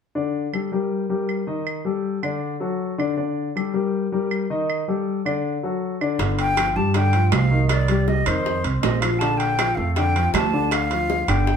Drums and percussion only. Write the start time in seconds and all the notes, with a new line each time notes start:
0.54 claves
1.29 claves
1.67 claves
2.23 claves
3.00 claves
3.57 claves
4.31 claves
4.70 claves
5.26 claves
6.01 claves
6.19 high bongo, high timbale
6.39 high timbale
6.57 high bongo, high timbale, low timbale, claves
6.94 high bongo, high timbale
7.13 high timbale
7.32 high bongo, low bongo, high timbale, low timbale, claves
7.69 high bongo, high timbale, claves
7.88 high bongo, high timbale
8.08 high bongo, low timbale
8.26 high bongo, high timbale, claves
8.46 high bongo
8.64 high timbale
8.83 high bongo, low bongo, high timbale, low timbale
9.02 high bongo, high timbale, claves
9.21 high bongo, high timbale
9.40 high timbale
9.59 high bongo, high timbale, low timbale, claves
9.96 high bongo, high timbale
10.16 high timbale
10.34 high bongo, low bongo, high timbale, low timbale, claves
10.71 high bongo, high timbale, claves
10.91 high bongo, high timbale
11.10 high bongo, low timbale
11.28 high bongo, high timbale, claves
11.47 high bongo